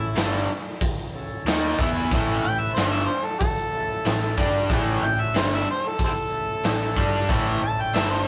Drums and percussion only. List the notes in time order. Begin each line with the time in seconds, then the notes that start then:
0.16 snare, open hi-hat
0.81 kick, open hi-hat
1.47 snare, open hi-hat
1.79 kick
2.11 kick, open hi-hat
2.76 snare, open hi-hat
3.41 kick, open hi-hat
4.05 snare, open hi-hat
4.38 kick
4.70 kick, open hi-hat
5.34 snare, open hi-hat
5.99 kick, open hi-hat
6.63 snare, open hi-hat
6.82 snare
6.96 kick
7.29 kick, open hi-hat
7.94 snare, open hi-hat